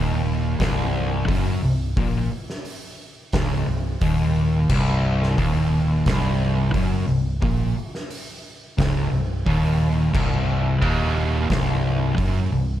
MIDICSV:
0, 0, Header, 1, 4, 480
1, 0, Start_track
1, 0, Key_signature, -3, "minor"
1, 0, Tempo, 681818
1, 1378, Time_signature, 4, 2, 24, 8
1, 9011, End_track
2, 0, Start_track
2, 0, Title_t, "Distorted electric guitar"
2, 0, Program_c, 0, 30
2, 0, Note_on_c, 0, 39, 107
2, 413, Note_off_c, 0, 39, 0
2, 422, Note_on_c, 0, 36, 112
2, 893, Note_off_c, 0, 36, 0
2, 908, Note_on_c, 0, 42, 103
2, 1136, Note_off_c, 0, 42, 0
2, 1155, Note_on_c, 0, 36, 78
2, 1339, Note_off_c, 0, 36, 0
2, 1388, Note_on_c, 0, 46, 119
2, 1617, Note_off_c, 0, 46, 0
2, 2352, Note_on_c, 0, 37, 122
2, 2579, Note_off_c, 0, 37, 0
2, 2594, Note_on_c, 0, 36, 74
2, 2780, Note_off_c, 0, 36, 0
2, 2832, Note_on_c, 0, 39, 113
2, 3300, Note_off_c, 0, 39, 0
2, 3313, Note_on_c, 0, 36, 113
2, 3780, Note_off_c, 0, 36, 0
2, 3784, Note_on_c, 0, 39, 107
2, 4256, Note_off_c, 0, 39, 0
2, 4269, Note_on_c, 0, 36, 118
2, 4738, Note_off_c, 0, 36, 0
2, 4741, Note_on_c, 0, 42, 109
2, 4974, Note_off_c, 0, 42, 0
2, 4982, Note_on_c, 0, 36, 74
2, 5174, Note_off_c, 0, 36, 0
2, 5217, Note_on_c, 0, 46, 110
2, 5452, Note_off_c, 0, 46, 0
2, 6180, Note_on_c, 0, 37, 115
2, 6412, Note_off_c, 0, 37, 0
2, 6419, Note_on_c, 0, 36, 69
2, 6611, Note_off_c, 0, 36, 0
2, 6663, Note_on_c, 0, 39, 103
2, 7128, Note_off_c, 0, 39, 0
2, 7131, Note_on_c, 0, 36, 112
2, 7612, Note_off_c, 0, 36, 0
2, 7612, Note_on_c, 0, 39, 103
2, 8087, Note_off_c, 0, 39, 0
2, 8095, Note_on_c, 0, 36, 104
2, 8561, Note_off_c, 0, 36, 0
2, 8564, Note_on_c, 0, 42, 109
2, 8802, Note_off_c, 0, 42, 0
2, 8819, Note_on_c, 0, 36, 77
2, 9009, Note_off_c, 0, 36, 0
2, 9011, End_track
3, 0, Start_track
3, 0, Title_t, "Fingered electric bass"
3, 0, Program_c, 1, 33
3, 0, Note_on_c, 1, 27, 103
3, 388, Note_off_c, 1, 27, 0
3, 423, Note_on_c, 1, 24, 93
3, 873, Note_off_c, 1, 24, 0
3, 903, Note_on_c, 1, 30, 100
3, 1124, Note_off_c, 1, 30, 0
3, 1148, Note_on_c, 1, 24, 86
3, 1367, Note_off_c, 1, 24, 0
3, 1384, Note_on_c, 1, 34, 105
3, 1605, Note_off_c, 1, 34, 0
3, 2347, Note_on_c, 1, 25, 93
3, 2568, Note_off_c, 1, 25, 0
3, 2588, Note_on_c, 1, 24, 79
3, 2808, Note_off_c, 1, 24, 0
3, 2825, Note_on_c, 1, 27, 93
3, 3275, Note_off_c, 1, 27, 0
3, 3304, Note_on_c, 1, 24, 105
3, 3755, Note_off_c, 1, 24, 0
3, 3790, Note_on_c, 1, 27, 99
3, 4238, Note_off_c, 1, 27, 0
3, 4268, Note_on_c, 1, 24, 100
3, 4717, Note_off_c, 1, 24, 0
3, 4747, Note_on_c, 1, 30, 98
3, 4967, Note_off_c, 1, 30, 0
3, 4989, Note_on_c, 1, 24, 89
3, 5209, Note_off_c, 1, 24, 0
3, 5227, Note_on_c, 1, 34, 99
3, 5448, Note_off_c, 1, 34, 0
3, 6183, Note_on_c, 1, 25, 90
3, 6405, Note_off_c, 1, 25, 0
3, 6423, Note_on_c, 1, 24, 79
3, 6644, Note_off_c, 1, 24, 0
3, 6664, Note_on_c, 1, 27, 97
3, 7113, Note_off_c, 1, 27, 0
3, 7141, Note_on_c, 1, 24, 102
3, 7591, Note_off_c, 1, 24, 0
3, 7616, Note_on_c, 1, 27, 100
3, 8068, Note_off_c, 1, 27, 0
3, 8099, Note_on_c, 1, 24, 96
3, 8549, Note_off_c, 1, 24, 0
3, 8574, Note_on_c, 1, 30, 96
3, 8798, Note_off_c, 1, 30, 0
3, 8818, Note_on_c, 1, 24, 82
3, 9011, Note_off_c, 1, 24, 0
3, 9011, End_track
4, 0, Start_track
4, 0, Title_t, "Drums"
4, 421, Note_on_c, 9, 46, 60
4, 422, Note_on_c, 9, 36, 105
4, 433, Note_on_c, 9, 38, 118
4, 491, Note_off_c, 9, 46, 0
4, 493, Note_off_c, 9, 36, 0
4, 503, Note_off_c, 9, 38, 0
4, 904, Note_on_c, 9, 46, 71
4, 905, Note_on_c, 9, 36, 108
4, 974, Note_off_c, 9, 46, 0
4, 975, Note_off_c, 9, 36, 0
4, 1385, Note_on_c, 9, 46, 72
4, 1387, Note_on_c, 9, 36, 113
4, 1456, Note_off_c, 9, 46, 0
4, 1457, Note_off_c, 9, 36, 0
4, 1758, Note_on_c, 9, 38, 36
4, 1828, Note_off_c, 9, 38, 0
4, 1865, Note_on_c, 9, 46, 69
4, 1936, Note_off_c, 9, 46, 0
4, 2341, Note_on_c, 9, 46, 70
4, 2347, Note_on_c, 9, 36, 105
4, 2353, Note_on_c, 9, 38, 113
4, 2411, Note_off_c, 9, 46, 0
4, 2418, Note_off_c, 9, 36, 0
4, 2423, Note_off_c, 9, 38, 0
4, 2825, Note_on_c, 9, 46, 67
4, 2827, Note_on_c, 9, 36, 107
4, 2895, Note_off_c, 9, 46, 0
4, 2898, Note_off_c, 9, 36, 0
4, 3305, Note_on_c, 9, 49, 113
4, 3308, Note_on_c, 9, 36, 109
4, 3376, Note_off_c, 9, 49, 0
4, 3378, Note_off_c, 9, 36, 0
4, 3682, Note_on_c, 9, 38, 34
4, 3753, Note_off_c, 9, 38, 0
4, 3788, Note_on_c, 9, 46, 66
4, 3789, Note_on_c, 9, 36, 111
4, 3859, Note_off_c, 9, 36, 0
4, 3859, Note_off_c, 9, 46, 0
4, 4267, Note_on_c, 9, 46, 65
4, 4269, Note_on_c, 9, 36, 100
4, 4279, Note_on_c, 9, 38, 117
4, 4337, Note_off_c, 9, 46, 0
4, 4339, Note_off_c, 9, 36, 0
4, 4349, Note_off_c, 9, 38, 0
4, 4745, Note_on_c, 9, 46, 62
4, 4747, Note_on_c, 9, 36, 102
4, 4816, Note_off_c, 9, 46, 0
4, 4817, Note_off_c, 9, 36, 0
4, 5226, Note_on_c, 9, 36, 109
4, 5227, Note_on_c, 9, 46, 72
4, 5297, Note_off_c, 9, 36, 0
4, 5298, Note_off_c, 9, 46, 0
4, 5596, Note_on_c, 9, 38, 35
4, 5666, Note_off_c, 9, 38, 0
4, 5706, Note_on_c, 9, 46, 68
4, 5776, Note_off_c, 9, 46, 0
4, 6185, Note_on_c, 9, 36, 118
4, 6185, Note_on_c, 9, 46, 67
4, 6197, Note_on_c, 9, 38, 110
4, 6255, Note_off_c, 9, 36, 0
4, 6255, Note_off_c, 9, 46, 0
4, 6267, Note_off_c, 9, 38, 0
4, 6663, Note_on_c, 9, 36, 107
4, 6664, Note_on_c, 9, 46, 70
4, 6733, Note_off_c, 9, 36, 0
4, 6734, Note_off_c, 9, 46, 0
4, 7143, Note_on_c, 9, 36, 117
4, 7145, Note_on_c, 9, 49, 107
4, 7213, Note_off_c, 9, 36, 0
4, 7215, Note_off_c, 9, 49, 0
4, 7620, Note_on_c, 9, 36, 111
4, 7621, Note_on_c, 9, 46, 71
4, 7690, Note_off_c, 9, 36, 0
4, 7691, Note_off_c, 9, 46, 0
4, 8096, Note_on_c, 9, 46, 60
4, 8097, Note_on_c, 9, 36, 107
4, 8108, Note_on_c, 9, 38, 121
4, 8166, Note_off_c, 9, 46, 0
4, 8168, Note_off_c, 9, 36, 0
4, 8178, Note_off_c, 9, 38, 0
4, 8575, Note_on_c, 9, 46, 57
4, 8576, Note_on_c, 9, 36, 102
4, 8645, Note_off_c, 9, 46, 0
4, 8646, Note_off_c, 9, 36, 0
4, 9011, End_track
0, 0, End_of_file